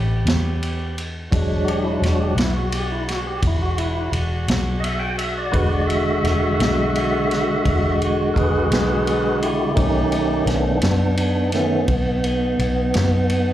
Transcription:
Already playing: fingered electric bass A1, saxophone section B3 C#4 G4
0.25 fingered electric bass E2, snare, ride
0.63 ride
0.98 ride
1.31 fingered electric bass E1, tonewheel organ F#3 G#3 D4, saxophone section G#3 D4 F#4, kick, ride
1.64 tonewheel organ F#4, ride
1.69 tonewheel organ G4
1.84 tonewheel organ E4
2.02 fingered electric bass E1, tonewheel organ F#4, snare, ride
2.20 tonewheel organ G4
2.35 fingered electric bass B1, tonewheel organ E4, snare, ride
2.56 tonewheel organ F#4
2.71 tonewheel organ F#4, ride
2.75 tonewheel organ G4
2.92 tonewheel organ E4
3.08 tonewheel organ F#4, snare, ride
3.27 tonewheel organ G4
3.42 fingered electric bass E1, kick, ride
3.47 tonewheel organ E4
3.62 tonewheel organ F#4
3.78 tonewheel organ E4, ride
4.12 fingered electric bass E1, ride
4.48 fingered electric bass B1, snare, ride
4.80 tonewheel organ D#5 E5, ride
4.99 tonewheel organ G5
5.18 tonewheel organ E5, ride
5.38 tonewheel organ D5
5.51 fingered electric bass E1, tonewheel organ D3 G#3 F#4 B4, saxophone section C#4, kick, ride
5.68 tonewheel organ D5
5.87 tonewheel organ E5, ride
6.24 fingered electric bass E1, snare, ride
6.59 fingered electric bass B1, snare, ride
6.95 ride
7.31 snare, ride
7.65 fingered electric bass E1, kick, ride
8.02 ride
8.34 fingered electric bass E1, tonewheel organ G#4 A#4, kick, ride
8.38 tonewheel organ B4
8.70 fingered electric bass B1, tonewheel organ G#4 B4, snare, ride
9.05 tonewheel organ G#4 B4, ride
9.42 tonewheel organ E4 G4, ride
9.74 fingered electric bass B1, tonewheel organ D#3 A3 C#4 D#4 G4, saxophone section A3 D#4, kick, ride
10.10 tonewheel organ D#4 G4, ride
10.46 fingered electric bass B1, tonewheel organ B3 D4, snare, ride
10.82 fingered electric bass F#2, tonewheel organ B3 D4, snare, ride
11.16 tonewheel organ B3 D4, ride
11.52 tonewheel organ D#3 A3 B3 C#4, snare, ride
11.88 fingered electric bass B1, kick, ride
12.24 ride
12.59 fingered electric bass B1, ride
12.94 fingered electric bass F#2, snare, ride
13.30 ride

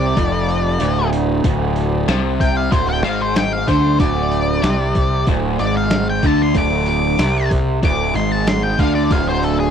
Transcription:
Already playing: picked electric bass C2, overdriven electric guitar C3, lead electric guitar D5
0.17 picked electric bass F1, overdriven electric guitar F2, kick, open hi-hat
0.49 open hi-hat
0.80 picked electric bass D1, overdriven electric guitar D2, open hi-hat
1.13 open hi-hat
1.44 picked electric bass D1, overdriven electric guitar D2, kick, open hi-hat
1.76 open hi-hat
2.08 picked electric bass C2, overdriven electric guitar C3, snare, open hi-hat
2.40 lead electric guitar G5, kick, open hi-hat
2.57 lead electric guitar F5
2.71 picked electric bass D1, overdriven electric guitar D2, lead electric guitar C5, kick, open hi-hat
2.89 lead electric guitar G5
3.04 picked electric bass G#1, overdriven electric guitar G#2, lead electric guitar F5, open hi-hat
3.21 lead electric guitar C5
3.36 lead electric guitar G5, snare, open hi-hat
3.53 lead electric guitar F5
3.68 picked electric bass D2, overdriven electric guitar D3, lead electric guitar C5, kick, open hi-hat
3.85 snare
3.99 picked electric bass D1, overdriven electric guitar D2, lead electric guitar D5, kick, open hi-hat
4.32 open hi-hat
4.63 picked electric bass C2, overdriven electric guitar C3, snare, open hi-hat
4.95 kick, open hi-hat
5.27 picked electric bass D1, overdriven electric guitar D2, kick, open hi-hat
5.59 picked electric bass G#1, overdriven electric guitar G#2, lead electric guitar D5, open hi-hat
5.77 lead electric guitar F5
5.90 snare, open hi-hat
6.10 lead electric guitar G5
6.23 picked electric bass D2, overdriven electric guitar D3, lead electric guitar A5, kick, open hi-hat
6.42 lead electric guitar C6
6.54 picked electric bass D1, overdriven electric guitar D2, lead electric guitar D6, kick, open hi-hat
6.86 lead electric guitar D6, open hi-hat
7.19 picked electric bass C2, overdriven electric guitar C3, snare, open hi-hat
7.51 kick, open hi-hat
7.83 picked electric bass D1, overdriven electric guitar D2, lead electric guitar D6, kick, open hi-hat
8.14 picked electric bass G#1, overdriven electric guitar G#2, lead electric guitar C6, open hi-hat
8.32 lead electric guitar A5
8.47 lead electric guitar C6, snare, open hi-hat
8.63 lead electric guitar G5
8.79 picked electric bass D2, overdriven electric guitar D3, lead electric guitar F5, kick, open hi-hat
8.95 lead electric guitar D5
9.11 picked electric bass D1, overdriven electric guitar D2, lead electric guitar F5, kick, open hi-hat
9.28 lead electric guitar C5
9.43 lead electric guitar A4, open hi-hat
9.60 lead electric guitar G#4

